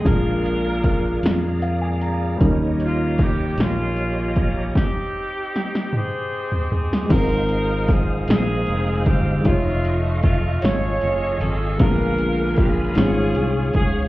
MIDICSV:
0, 0, Header, 1, 6, 480
1, 0, Start_track
1, 0, Key_signature, -4, "major"
1, 0, Tempo, 783290
1, 28, Time_signature, 6, 3, 24, 8
1, 8629, End_track
2, 0, Start_track
2, 0, Title_t, "Tonewheel organ"
2, 0, Program_c, 0, 16
2, 0, Note_on_c, 0, 68, 50
2, 33, Note_on_c, 0, 77, 48
2, 34, Note_on_c, 0, 82, 58
2, 37, Note_on_c, 0, 74, 46
2, 1449, Note_off_c, 0, 68, 0
2, 1460, Note_off_c, 0, 77, 0
2, 1462, Note_off_c, 0, 74, 0
2, 1480, Note_on_c, 0, 73, 52
2, 1483, Note_on_c, 0, 67, 50
2, 1483, Note_on_c, 0, 75, 49
2, 2893, Note_off_c, 0, 82, 0
2, 2904, Note_off_c, 0, 73, 0
2, 2905, Note_off_c, 0, 67, 0
2, 2905, Note_off_c, 0, 75, 0
2, 4346, Note_on_c, 0, 56, 55
2, 4348, Note_on_c, 0, 77, 50
2, 4348, Note_on_c, 0, 82, 60
2, 4350, Note_on_c, 0, 72, 49
2, 5774, Note_off_c, 0, 56, 0
2, 5775, Note_off_c, 0, 82, 0
2, 5776, Note_off_c, 0, 72, 0
2, 5797, Note_on_c, 0, 85, 64
2, 5802, Note_on_c, 0, 65, 57
2, 5802, Note_on_c, 0, 75, 55
2, 7201, Note_off_c, 0, 77, 0
2, 7217, Note_off_c, 0, 85, 0
2, 7219, Note_off_c, 0, 65, 0
2, 7219, Note_off_c, 0, 75, 0
2, 7231, Note_on_c, 0, 80, 52
2, 7231, Note_on_c, 0, 83, 66
2, 7232, Note_on_c, 0, 70, 57
2, 7235, Note_on_c, 0, 77, 54
2, 7940, Note_off_c, 0, 80, 0
2, 7940, Note_off_c, 0, 83, 0
2, 7941, Note_off_c, 0, 70, 0
2, 7942, Note_off_c, 0, 77, 0
2, 7949, Note_on_c, 0, 77, 57
2, 7951, Note_on_c, 0, 68, 66
2, 7951, Note_on_c, 0, 73, 57
2, 7951, Note_on_c, 0, 85, 67
2, 8629, Note_off_c, 0, 68, 0
2, 8629, Note_off_c, 0, 73, 0
2, 8629, Note_off_c, 0, 77, 0
2, 8629, Note_off_c, 0, 85, 0
2, 8629, End_track
3, 0, Start_track
3, 0, Title_t, "Saxophone section"
3, 0, Program_c, 1, 65
3, 40, Note_on_c, 1, 70, 84
3, 44, Note_on_c, 1, 62, 58
3, 45, Note_on_c, 1, 65, 61
3, 974, Note_off_c, 1, 62, 0
3, 975, Note_off_c, 1, 65, 0
3, 997, Note_off_c, 1, 70, 0
3, 1745, Note_on_c, 1, 65, 75
3, 1954, Note_off_c, 1, 65, 0
3, 1973, Note_on_c, 1, 67, 71
3, 2203, Note_off_c, 1, 67, 0
3, 2204, Note_on_c, 1, 58, 62
3, 2208, Note_on_c, 1, 61, 59
3, 2213, Note_on_c, 1, 65, 85
3, 2684, Note_off_c, 1, 65, 0
3, 2694, Note_on_c, 1, 65, 78
3, 2895, Note_off_c, 1, 58, 0
3, 2897, Note_off_c, 1, 61, 0
3, 2908, Note_off_c, 1, 65, 0
3, 2923, Note_on_c, 1, 63, 65
3, 2924, Note_on_c, 1, 67, 86
3, 2925, Note_on_c, 1, 60, 59
3, 3615, Note_off_c, 1, 63, 0
3, 3616, Note_off_c, 1, 60, 0
3, 3640, Note_off_c, 1, 67, 0
3, 3646, Note_on_c, 1, 72, 91
3, 3647, Note_on_c, 1, 67, 67
3, 3647, Note_on_c, 1, 68, 91
3, 3648, Note_on_c, 1, 60, 65
3, 3648, Note_on_c, 1, 63, 55
3, 3649, Note_off_c, 1, 63, 0
3, 3649, Note_on_c, 1, 63, 60
3, 4096, Note_off_c, 1, 72, 0
3, 4106, Note_off_c, 1, 68, 0
3, 4114, Note_on_c, 1, 68, 73
3, 4336, Note_off_c, 1, 67, 0
3, 4337, Note_off_c, 1, 60, 0
3, 4337, Note_off_c, 1, 63, 0
3, 4354, Note_off_c, 1, 68, 0
3, 4360, Note_on_c, 1, 70, 91
3, 4367, Note_on_c, 1, 65, 68
3, 4369, Note_on_c, 1, 63, 67
3, 4837, Note_off_c, 1, 70, 0
3, 4843, Note_on_c, 1, 68, 76
3, 5056, Note_off_c, 1, 65, 0
3, 5057, Note_off_c, 1, 63, 0
3, 5074, Note_off_c, 1, 68, 0
3, 5081, Note_on_c, 1, 68, 96
3, 5082, Note_on_c, 1, 60, 69
3, 5083, Note_on_c, 1, 65, 69
3, 5533, Note_off_c, 1, 68, 0
3, 5553, Note_on_c, 1, 67, 90
3, 5773, Note_off_c, 1, 60, 0
3, 5773, Note_off_c, 1, 65, 0
3, 5793, Note_off_c, 1, 67, 0
3, 5799, Note_on_c, 1, 65, 84
3, 5803, Note_on_c, 1, 56, 62
3, 5804, Note_on_c, 1, 57, 64
3, 6110, Note_off_c, 1, 65, 0
3, 6272, Note_on_c, 1, 65, 77
3, 6492, Note_off_c, 1, 56, 0
3, 6492, Note_off_c, 1, 57, 0
3, 6495, Note_off_c, 1, 65, 0
3, 6511, Note_on_c, 1, 73, 107
3, 6512, Note_on_c, 1, 68, 79
3, 6514, Note_on_c, 1, 69, 73
3, 6986, Note_off_c, 1, 69, 0
3, 6990, Note_off_c, 1, 73, 0
3, 6994, Note_on_c, 1, 69, 91
3, 7205, Note_off_c, 1, 68, 0
3, 7231, Note_off_c, 1, 69, 0
3, 7232, Note_on_c, 1, 65, 69
3, 7232, Note_on_c, 1, 70, 98
3, 7233, Note_on_c, 1, 62, 69
3, 7709, Note_off_c, 1, 70, 0
3, 7710, Note_off_c, 1, 65, 0
3, 7714, Note_on_c, 1, 61, 68
3, 7717, Note_on_c, 1, 65, 72
3, 7717, Note_on_c, 1, 68, 96
3, 7924, Note_off_c, 1, 62, 0
3, 8403, Note_off_c, 1, 61, 0
3, 8405, Note_off_c, 1, 65, 0
3, 8405, Note_off_c, 1, 68, 0
3, 8434, Note_on_c, 1, 68, 89
3, 8629, Note_off_c, 1, 68, 0
3, 8629, End_track
4, 0, Start_track
4, 0, Title_t, "Upright piano"
4, 0, Program_c, 2, 0
4, 0, Control_c, 2, 64, 127
4, 9, Note_on_c, 2, 56, 52
4, 26, Note_on_c, 2, 62, 46
4, 30, Note_on_c, 2, 46, 49
4, 36, Control_c, 2, 64, 0
4, 39, Note_on_c, 2, 65, 45
4, 56, Note_on_c, 2, 70, 50
4, 135, Control_c, 2, 64, 127
4, 727, Note_off_c, 2, 46, 0
4, 995, Note_on_c, 2, 77, 51
4, 1105, Note_off_c, 2, 77, 0
4, 1113, Note_on_c, 2, 80, 51
4, 1224, Note_off_c, 2, 80, 0
4, 1235, Note_on_c, 2, 82, 58
4, 1438, Note_off_c, 2, 56, 0
4, 1446, Note_off_c, 2, 62, 0
4, 1450, Note_on_c, 2, 55, 57
4, 1453, Note_off_c, 2, 65, 0
4, 1457, Note_off_c, 2, 82, 0
4, 1462, Note_off_c, 2, 70, 0
4, 1466, Note_on_c, 2, 61, 56
4, 1475, Note_on_c, 2, 51, 58
4, 1481, Control_c, 2, 64, 0
4, 1484, Note_on_c, 2, 63, 59
4, 1500, Note_on_c, 2, 70, 66
4, 1578, Control_c, 2, 64, 127
4, 2170, Note_off_c, 2, 51, 0
4, 2879, Note_off_c, 2, 55, 0
4, 2887, Note_off_c, 2, 61, 0
4, 2896, Note_off_c, 2, 63, 0
4, 2904, Note_off_c, 2, 70, 0
4, 2923, Control_c, 2, 64, 0
4, 4326, Note_on_c, 2, 56, 51
4, 4345, Note_on_c, 2, 60, 51
4, 4352, Note_on_c, 2, 44, 54
4, 4359, Note_on_c, 2, 65, 48
4, 4376, Note_on_c, 2, 68, 49
4, 4405, Note_off_c, 2, 68, 0
4, 4417, Note_on_c, 2, 70, 59
4, 4452, Control_c, 2, 64, 127
4, 5048, Note_off_c, 2, 44, 0
4, 5754, Note_off_c, 2, 56, 0
4, 5764, Note_off_c, 2, 60, 0
4, 5766, Note_on_c, 2, 56, 46
4, 5771, Note_off_c, 2, 65, 0
4, 5783, Note_on_c, 2, 63, 49
4, 5800, Note_off_c, 2, 70, 0
4, 5800, Note_on_c, 2, 65, 51
4, 5802, Control_c, 2, 64, 0
4, 5807, Note_on_c, 2, 53, 56
4, 5814, Note_on_c, 2, 73, 58
4, 5819, Note_off_c, 2, 56, 0
4, 5924, Control_c, 2, 64, 127
4, 7200, Note_off_c, 2, 63, 0
4, 7208, Note_off_c, 2, 65, 0
4, 7212, Note_off_c, 2, 53, 0
4, 7215, Note_off_c, 2, 73, 0
4, 7217, Note_on_c, 2, 56, 57
4, 7225, Note_on_c, 2, 59, 52
4, 7229, Note_on_c, 2, 46, 57
4, 7232, Note_on_c, 2, 50, 52
4, 7237, Control_c, 2, 64, 0
4, 7242, Note_on_c, 2, 70, 63
4, 7343, Control_c, 2, 64, 127
4, 7919, Note_off_c, 2, 56, 0
4, 7922, Note_off_c, 2, 46, 0
4, 7928, Note_on_c, 2, 56, 56
4, 7938, Note_on_c, 2, 61, 53
4, 7941, Note_on_c, 2, 44, 56
4, 7945, Note_off_c, 2, 59, 0
4, 7946, Note_on_c, 2, 63, 40
4, 7948, Note_off_c, 2, 50, 0
4, 7953, Note_off_c, 2, 70, 0
4, 7954, Note_on_c, 2, 73, 63
4, 7956, Control_c, 2, 64, 0
4, 7986, Note_off_c, 2, 63, 0
4, 7986, Note_on_c, 2, 65, 54
4, 8076, Control_c, 2, 64, 127
4, 8629, Note_off_c, 2, 44, 0
4, 8629, Note_off_c, 2, 56, 0
4, 8629, Note_off_c, 2, 61, 0
4, 8629, Note_off_c, 2, 65, 0
4, 8629, Note_off_c, 2, 73, 0
4, 8629, End_track
5, 0, Start_track
5, 0, Title_t, "Fingered electric bass"
5, 0, Program_c, 3, 33
5, 32, Note_on_c, 3, 34, 75
5, 728, Note_off_c, 3, 34, 0
5, 752, Note_on_c, 3, 41, 75
5, 1449, Note_off_c, 3, 41, 0
5, 1473, Note_on_c, 3, 39, 81
5, 2169, Note_off_c, 3, 39, 0
5, 2192, Note_on_c, 3, 34, 75
5, 2889, Note_off_c, 3, 34, 0
5, 4353, Note_on_c, 3, 32, 85
5, 5049, Note_off_c, 3, 32, 0
5, 5078, Note_on_c, 3, 34, 91
5, 5297, Note_off_c, 3, 34, 0
5, 5317, Note_on_c, 3, 29, 73
5, 5553, Note_off_c, 3, 29, 0
5, 5553, Note_on_c, 3, 31, 79
5, 5774, Note_off_c, 3, 31, 0
5, 5792, Note_on_c, 3, 29, 83
5, 6486, Note_off_c, 3, 29, 0
5, 6518, Note_on_c, 3, 32, 85
5, 6735, Note_off_c, 3, 32, 0
5, 6761, Note_on_c, 3, 30, 84
5, 6976, Note_off_c, 3, 30, 0
5, 6996, Note_on_c, 3, 32, 81
5, 7213, Note_off_c, 3, 32, 0
5, 7230, Note_on_c, 3, 34, 82
5, 7922, Note_off_c, 3, 34, 0
5, 7949, Note_on_c, 3, 32, 92
5, 8168, Note_off_c, 3, 32, 0
5, 8182, Note_on_c, 3, 36, 83
5, 8404, Note_off_c, 3, 36, 0
5, 8422, Note_on_c, 3, 37, 83
5, 8629, Note_off_c, 3, 37, 0
5, 8629, End_track
6, 0, Start_track
6, 0, Title_t, "Drums"
6, 34, Note_on_c, 9, 36, 78
6, 38, Note_on_c, 9, 42, 66
6, 95, Note_off_c, 9, 36, 0
6, 99, Note_off_c, 9, 42, 0
6, 278, Note_on_c, 9, 42, 40
6, 339, Note_off_c, 9, 42, 0
6, 512, Note_on_c, 9, 42, 38
6, 515, Note_on_c, 9, 36, 69
6, 574, Note_off_c, 9, 42, 0
6, 577, Note_off_c, 9, 36, 0
6, 755, Note_on_c, 9, 42, 65
6, 770, Note_on_c, 9, 38, 88
6, 816, Note_off_c, 9, 42, 0
6, 831, Note_off_c, 9, 38, 0
6, 993, Note_on_c, 9, 42, 36
6, 1054, Note_off_c, 9, 42, 0
6, 1234, Note_on_c, 9, 42, 39
6, 1295, Note_off_c, 9, 42, 0
6, 1475, Note_on_c, 9, 36, 81
6, 1475, Note_on_c, 9, 42, 68
6, 1536, Note_off_c, 9, 36, 0
6, 1537, Note_off_c, 9, 42, 0
6, 1715, Note_on_c, 9, 42, 40
6, 1776, Note_off_c, 9, 42, 0
6, 1949, Note_on_c, 9, 42, 38
6, 1955, Note_on_c, 9, 36, 76
6, 1962, Note_on_c, 9, 38, 29
6, 2011, Note_off_c, 9, 42, 0
6, 2016, Note_off_c, 9, 36, 0
6, 2023, Note_off_c, 9, 38, 0
6, 2192, Note_on_c, 9, 42, 68
6, 2207, Note_on_c, 9, 38, 84
6, 2253, Note_off_c, 9, 42, 0
6, 2268, Note_off_c, 9, 38, 0
6, 2430, Note_on_c, 9, 42, 39
6, 2491, Note_off_c, 9, 42, 0
6, 2671, Note_on_c, 9, 42, 36
6, 2674, Note_on_c, 9, 36, 69
6, 2732, Note_off_c, 9, 42, 0
6, 2736, Note_off_c, 9, 36, 0
6, 2913, Note_on_c, 9, 36, 86
6, 2924, Note_on_c, 9, 38, 70
6, 2974, Note_off_c, 9, 36, 0
6, 2985, Note_off_c, 9, 38, 0
6, 3406, Note_on_c, 9, 38, 59
6, 3467, Note_off_c, 9, 38, 0
6, 3525, Note_on_c, 9, 38, 55
6, 3586, Note_off_c, 9, 38, 0
6, 3632, Note_on_c, 9, 45, 61
6, 3694, Note_off_c, 9, 45, 0
6, 3995, Note_on_c, 9, 43, 65
6, 4056, Note_off_c, 9, 43, 0
6, 4117, Note_on_c, 9, 43, 69
6, 4178, Note_off_c, 9, 43, 0
6, 4246, Note_on_c, 9, 38, 65
6, 4308, Note_off_c, 9, 38, 0
6, 4352, Note_on_c, 9, 42, 74
6, 4353, Note_on_c, 9, 36, 93
6, 4353, Note_on_c, 9, 49, 78
6, 4413, Note_off_c, 9, 42, 0
6, 4414, Note_off_c, 9, 36, 0
6, 4414, Note_off_c, 9, 49, 0
6, 4589, Note_on_c, 9, 42, 47
6, 4650, Note_off_c, 9, 42, 0
6, 4829, Note_on_c, 9, 42, 42
6, 4833, Note_on_c, 9, 36, 78
6, 4841, Note_on_c, 9, 38, 29
6, 4890, Note_off_c, 9, 42, 0
6, 4894, Note_off_c, 9, 36, 0
6, 4902, Note_off_c, 9, 38, 0
6, 5073, Note_on_c, 9, 42, 73
6, 5088, Note_on_c, 9, 38, 98
6, 5134, Note_off_c, 9, 42, 0
6, 5149, Note_off_c, 9, 38, 0
6, 5310, Note_on_c, 9, 42, 40
6, 5372, Note_off_c, 9, 42, 0
6, 5551, Note_on_c, 9, 42, 39
6, 5554, Note_on_c, 9, 36, 78
6, 5612, Note_off_c, 9, 42, 0
6, 5615, Note_off_c, 9, 36, 0
6, 5790, Note_on_c, 9, 42, 74
6, 5793, Note_on_c, 9, 36, 86
6, 5851, Note_off_c, 9, 42, 0
6, 5854, Note_off_c, 9, 36, 0
6, 6033, Note_on_c, 9, 42, 46
6, 6095, Note_off_c, 9, 42, 0
6, 6267, Note_on_c, 9, 42, 40
6, 6272, Note_on_c, 9, 36, 75
6, 6328, Note_off_c, 9, 42, 0
6, 6334, Note_off_c, 9, 36, 0
6, 6509, Note_on_c, 9, 42, 74
6, 6524, Note_on_c, 9, 38, 95
6, 6570, Note_off_c, 9, 42, 0
6, 6585, Note_off_c, 9, 38, 0
6, 6750, Note_on_c, 9, 42, 41
6, 6811, Note_off_c, 9, 42, 0
6, 6991, Note_on_c, 9, 42, 41
6, 7052, Note_off_c, 9, 42, 0
6, 7228, Note_on_c, 9, 42, 75
6, 7230, Note_on_c, 9, 36, 84
6, 7289, Note_off_c, 9, 42, 0
6, 7291, Note_off_c, 9, 36, 0
6, 7466, Note_on_c, 9, 42, 43
6, 7527, Note_off_c, 9, 42, 0
6, 7699, Note_on_c, 9, 42, 47
6, 7707, Note_on_c, 9, 36, 78
6, 7711, Note_on_c, 9, 38, 31
6, 7760, Note_off_c, 9, 42, 0
6, 7768, Note_off_c, 9, 36, 0
6, 7773, Note_off_c, 9, 38, 0
6, 7937, Note_on_c, 9, 42, 76
6, 7952, Note_on_c, 9, 38, 90
6, 7998, Note_off_c, 9, 42, 0
6, 8013, Note_off_c, 9, 38, 0
6, 8180, Note_on_c, 9, 42, 42
6, 8241, Note_off_c, 9, 42, 0
6, 8416, Note_on_c, 9, 42, 41
6, 8424, Note_on_c, 9, 36, 73
6, 8478, Note_off_c, 9, 42, 0
6, 8485, Note_off_c, 9, 36, 0
6, 8629, End_track
0, 0, End_of_file